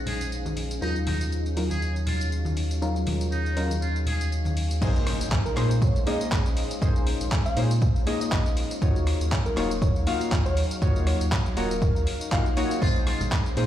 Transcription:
Already playing: A#1 G#3 C#4 D#4 G#4 C5 F5, downlifter
0.06 G#4, open hi-hat, low conga
0.21 tambourine
0.32 tambourine
0.46 tambourine, high conga
0.57 open hi-hat
0.71 tambourine
0.81 D#2 F#3 C#4 D#4 F4 A#4 C#5, tambourine
0.96 tambourine
1.07 D#4, open hi-hat, high conga, low conga
1.21 tambourine
1.32 tambourine
1.46 tambourine
1.57 F#3 C#4 D#4 F4 A#4, open hi-hat
1.70 G#4, tambourine, high conga
1.82 tambourine
1.96 tambourine
2.07 F4, open hi-hat, low conga
2.21 tambourine
2.32 tambourine
2.45 tambourine, high conga
2.57 open hi-hat
2.71 tambourine
2.81 F#3 C#4 D#4 F4 A#4, tambourine
2.96 tambourine
3.06 open hi-hat, high conga, low conga
3.21 tambourine
3.32 D#4, tambourine
3.46 tambourine
3.57 F#3 C#4 D#4 F4 A#4, open hi-hat
3.70 tambourine, high conga
3.82 F4, tambourine
3.96 tambourine
4.06 G#4, open hi-hat, low conga
4.21 tambourine
4.32 tambourine
4.45 tambourine, high conga
4.57 open hi-hat
4.71 tambourine
4.81 A#1 G#3 A#3 C#4 D#4 G#4 C5, kick, crash, tambourine, impact
4.96 tambourine
5.07 cross-stick, open hi-hat
5.21 A#1, tambourine
5.32 kick, clap, tambourine
5.46 A#4, tambourine
5.57 A#2 A#3 C#4 D#4 G#4 C5, cross-stick, clap, open hi-hat
5.71 tambourine
5.82 C#5, kick, tambourine
5.96 A#1, tambourine
6.06 A#3 C#4 D#4 G#4 D#5, open hi-hat
6.21 tambourine
6.32 A#1, kick, clap, tambourine
6.46 tambourine
6.57 open hi-hat
6.71 tambourine
6.81 A#1 A#3 C#4 D#4 F4 G#4 C5, kick, tambourine
6.96 tambourine
7.07 open hi-hat
7.21 A#1, tambourine
7.32 kick, clap, tambourine
7.46 F5, tambourine
7.57 A#2 A#3 C#4 D#4 G#4 C5, open hi-hat
7.71 tambourine
7.82 kick, tambourine
7.96 A#1, tambourine
8.06 A#3 C#4 D#4 G#4 D#5, open hi-hat
8.21 D#5, tambourine
8.32 A#1, kick, clap, tambourine
8.46 tambourine
8.57 open hi-hat
8.71 tambourine
8.81 D#2 F#3 A#3 D#4 F4 F#4 C#5 F5, kick, tambourine
8.96 tambourine
9.07 cross-stick, open hi-hat
9.21 D#2, tambourine
9.32 kick, clap, tambourine
9.46 A#4, tambourine
9.57 D#1 A#3 D#4 F4 F#4 C#5, cross-stick, clap, open hi-hat
9.71 tambourine
9.82 C#5, kick, tambourine
9.96 D#2, tambourine
10.06 A#3 D#4 F4 F#4 F5, open hi-hat
10.21 tambourine
10.32 D#2, kick, clap, tambourine
10.46 C#5, tambourine
10.57 open hi-hat
10.71 tambourine
10.82 D#2 A#3 D#4 F4 F#4 C#5, kick, tambourine
10.96 tambourine
11.07 C#5, cross-stick, open hi-hat
11.21 D#2, tambourine
11.32 kick, clap, tambourine
11.46 tambourine
11.57 D#1 A#3 D#4 F4 F#4 A#4 C#5, open hi-hat
11.71 tambourine
11.82 kick, tambourine
11.96 D#2, tambourine
12.07 open hi-hat
12.21 tambourine
12.32 A#1 A#3 D#4 F4 F#4 F5, kick, clap, tambourine
12.46 tambourine
12.57 A#3 D#4 F4 F#4 C#5, open hi-hat
12.71 tambourine
12.82 A#1 G#3 A#3 C#4 D#4 F4 G#4 C5, kick, tambourine
12.96 G#4, tambourine
13.07 F4, cross-stick, open hi-hat
13.21 A#1, tambourine, low conga
13.32 kick, clap, tambourine
13.46 tambourine
13.57 A#2 A#3 C#4 D#4 G#4 C5, open hi-hat

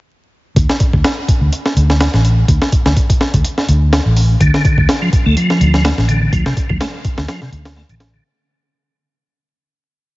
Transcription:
0.56 D2, kick, closed hi-hat
0.70 snare
0.80 kick, closed hi-hat
0.93 D2, kick
1.04 snare, closed hi-hat
1.28 kick, closed hi-hat
1.41 D2
1.52 closed hi-hat
1.66 snare
1.76 D2, closed hi-hat
1.90 snare
2.00 snare, closed hi-hat
2.14 A1, snare
2.25 closed hi-hat
2.48 D2, kick, closed hi-hat
2.62 snare
2.72 kick, closed hi-hat
2.86 D2, snare
2.96 kick, closed hi-hat
3.10 kick, closed hi-hat
3.21 snare
3.34 D2, kick, closed hi-hat
3.44 closed hi-hat
3.58 snare
3.68 D2, closed hi-hat
3.93 snare, closed hi-hat
4.06 A1
4.17 open hi-hat
4.40 D2 D3, kick, closed hi-hat
4.54 snare
4.65 kick, closed hi-hat
4.78 D2, kick
4.89 snare, closed hi-hat
5.02 F3
5.13 kick, closed hi-hat
5.26 D2 A3
5.37 F3, closed hi-hat
5.50 snare
5.61 D2, closed hi-hat
5.74 snare
5.84 A3, snare, closed hi-hat
5.98 A1, snare
6.09 D3, closed hi-hat
6.22 D3
6.33 D2 F3, kick, closed hi-hat
6.46 C3, snare
6.57 kick, closed hi-hat
6.69 D2 F3, kick
6.80 A3, snare, closed hi-hat
7.05 kick, closed hi-hat
7.18 D2, snare
7.28 F3, snare, closed hi-hat
7.42 C3, snare
7.52 D2, closed hi-hat
7.65 snare, closed hi-hat
7.77 A3, snare
7.89 A1 D3, closed hi-hat
8.00 snare, closed hi-hat
8.14 D3

